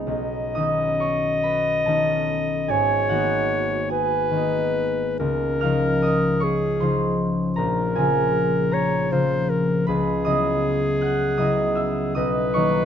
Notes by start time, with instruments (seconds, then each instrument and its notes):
Already playing: harp C#2 G#3 B3 D#4 C#5
0.07 harp B1, clarinet D#5
0.55 harp D#3 B3 C#4 D#4 D#5 D#6
1.00 harp C#5 C#6
1.43 harp B4 B5
1.86 harp D#3 B3 C#4 D#4 A4 A5
2.68 harp G#1 G#4 G#5, clarinet C#5
3.09 harp D#3 A#3 B3 D#4 F#4 F#5
3.89 harp G#4 G#5, clarinet B4
4.31 harp D#3 A#3 B3
4.37 harp D#4
5.19 harp C#2, clarinet A#4
5.61 harp C#3 F3 C#4 D#4 F5 F6
6.02 harp D#5 D#6
6.40 clarinet G#4, harp C#5 C#6
6.80 harp C#3 F3 C#4 D#4 C5 C6
7.56 harp A#1 A#4 A#5, clarinet A#4
7.95 harp C#3 F3 C4 G#4 G#5
8.00 harp F4
8.71 harp A#4 A#5, clarinet C#5
9.11 harp C#3 F3 C4 F4, clarinet C5
9.50 clarinet A#4
9.87 harp C#2 B4 B5, clarinet G#4
10.25 harp C#3 F#3 B3 E4 D#5 D#6
11.01 harp F#5 F#6
11.37 harp C#3 F#3 B3 E4 D#5 D#6
11.75 harp E5 E6
12.15 harp B1 D#5 D#6, clarinet B4
12.54 harp D#3 F#3 A#3 D#4 C#5 C#6